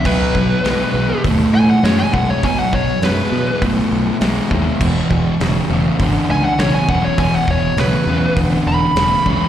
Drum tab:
CC |x-------|--------|x-------|--------|
HH |--o-o-o-|o-o-o-o-|--o-o-o-|o-o-o-o-|
SD |--o---o-|--o---o-|--o---o-|--o---o-|
BD |oo--o--o|oo--o--o|oo--o--o|oo--o--o|